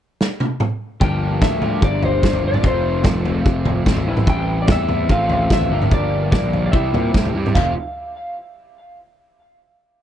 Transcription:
0.21 snare
0.40 high tom
0.60 mid tom
1.00 G1 G2 D3 F3 G3 A#3 D4 G4 A#4 G5, kick, floor tom
1.42 D2 E5, kick, snare, floor tom, mid tom
1.62 G2 D3 G3 A#3 D4 A#4, floor tom, mid tom
1.82 G1 D5, kick
2.03 C5, floor tom
2.22 G1 G2 D3 G3 A#3 D4 A#4, kick, snare
2.33 floor tom
2.44 G1 D5
2.54 mid tom
2.63 F1 F2 C3 F3 A3 C4 F4 A4, kick, floor tom
2.67 C5
3.04 F1, kick, snare, floor tom, mid tom
3.25 F3 A3 C4 F4 A4, floor tom
3.45 F1, kick
3.65 floor tom, mid tom
3.86 G#1 F3 A3 C4 F4 A4, kick, snare
3.96 floor tom
4.07 A1 A2 E3 G3 A3 C4 E4 A4
4.17 mid tom
4.27 G5, kick, floor tom
4.62 D5
4.68 E2 A2 E3 A3 C4 E4 A4 E5, kick, snare, floor tom, mid tom
4.89 floor tom, mid tom
5.08 A1 A2 F3 A3 C4 F4 A4 F5, kick
5.29 floor tom
5.50 A1 E5, kick, snare
5.61 floor tom
5.70 G1 G2 D3 F3 G3 A#3 D4 G4 A#4
5.82 mid tom
5.91 G1 D5, kick, floor tom
6.31 A#1 G2 D3 G3 A#3 D4 A#4 D5, kick, snare, floor tom, mid tom
6.53 floor tom
6.66 D5
6.72 C2 C3 E3 G3 C4 E4 G4 E5, kick
6.92 A#2, floor tom, mid tom
7.14 A2, kick, snare
7.25 floor tom
7.34 G2 C3 G3 C4 E4 G4
7.46 mid tom
7.55 F1 F2 C3 F3 A3 C4 F4 F5, kick, floor tom, china

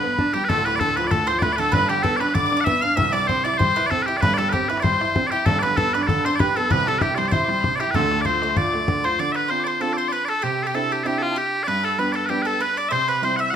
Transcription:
Already playing: G1 G2 B4 B5
0.03 B3
0.19 D4 A5, bodhran
0.34 G3 G4 G5
0.45 B4
0.49 D1 D2 A4 A5, bodhran
0.65 A2 B4 B5, bodhran
0.75 A4 D5
0.80 D3 A4 A5, bodhran
0.96 F3 B4 B5, bodhran
1.04 D5, bodhran
1.11 A2 A4 A5, bodhran
1.27 F3 C5 C6, bodhran
1.39 B4 D5 B5, bodhran
1.43 A3
1.52 B4 D5
1.58 D3 A4 A5
1.72 G1 G2 B4 B5, bodhran
1.87 D3 G4 A5, bodhran
1.91 G5
2.03 B3 A4 A5, bodhran
2.16 B4 D5, bodhran
2.21 D4 B4 B5
2.29 bodhran
2.34 D3 D5 D6, bodhran
2.46 D5
2.52 D4, bodhran
2.57 D5
2.61 E5 F#5
2.66 B3 E5 E6, bodhran
2.82 D4 F5 F6
2.96 C2 C3 E5 E6, bodhran
3.13 G3 D5 D6, bodhran
3.25 C4 C5 C6 D6
3.29 bodhran
3.44 E4 D5 D6, bodhran
3.54 C5, bodhran
3.59 G3 C5 C6, bodhran
3.76 E4 B4, bodhran
3.87 A4 D5 A5
3.91 C4 A4, bodhran
4.02 G4 B4
4.06 E4 G4 G5, bodhran
4.17 B4 D5
4.21 G1 G2 B4 B5, bodhran
4.34 D5
4.38 G3 A4 A5, bodhran
4.49 G4 B4
4.54 C4 G5, bodhran
4.69 E4 B4 B5, bodhran
4.77 D5, bodhran
4.82 G3 C5 C6, bodhran
5.01 E4, bodhran
5.15 C4, bodhran
5.27 G4 D5
5.32 E4 G4 G5
5.46 G1 G2 A4 A5, bodhran
5.59 B4 D5
5.63 D3, bodhran
5.77 B3 A4 A5, bodhran
5.93 D4 B4 B5, bodhran
6.01 D5, bodhran
6.07 D3 A4 A5, bodhran
6.24 D4 C5 C6, bodhran
6.36 B4 D5 B5
6.40 G4 B4, bodhran
6.52 G5 A5
6.56 B3 A4
6.70 C2 C3 B4 B5, bodhran
6.86 G3 A4 A5, bodhran
6.98 E4 G4 B4 G5 A5, bodhran
7.15 G3 C5 D5 C6, bodhran
7.25 D5, bodhran
7.31 E4 C5 C6, bodhran
7.44 G3 D6
7.49 C6, bodhran
7.60 C3 B5, bodhran
7.65 C6
7.76 D5
7.80 E4 G4 G5
7.91 A4 B4, bodhran
7.95 D2 D3 A4 A5
8.11 A3, bodhran
8.20 D5 D6
8.25 F4 C5 C6, bodhran
8.42 A3 C5, bodhran
8.49 bodhran
8.56 F4 D5 D6, bodhran
8.73 A3, bodhran
8.88 D3, bodhran
9.04 F4 C5 C6, bodhran
9.19 D3 D5 D6
9.32 B4 E5 B5
9.48 C4 D4 F4 C5 C6
9.60 D6
9.64 C5 D5
9.71 C6
9.80 C4 D4 F4 A4 A5
9.93 D5
9.97 C5 C6
10.08 B4 D5
10.12 B4 B5
10.25 A4 D5 A5
10.29 A4
10.42 C3 G4 G5
10.63 G4 A4
10.67 G5
10.74 C4 D4 E4 A4 A5
10.92 G4
11.04 C4 D4 E4 G4 A4 G5
11.18 A4 F5
11.22 F4
11.31 A5
11.36 G4 G5
11.63 B4 D5
11.68 G2 B4 B5
11.83 A4
11.98 G3 B3 D4 B4 B5
12.12 A4 D5 A5
12.26 G4 B4 G5
12.30 G3 B3 D4
12.42 A4 B4
12.47 A4 A5
12.61 B4 B5
12.77 D5 D6
12.89 C3 C5 E5
12.93 C6
13.08 B4 B5
13.22 G3 C4 E4 C5 C6
13.37 E5 F#5 E6
13.51 F#5

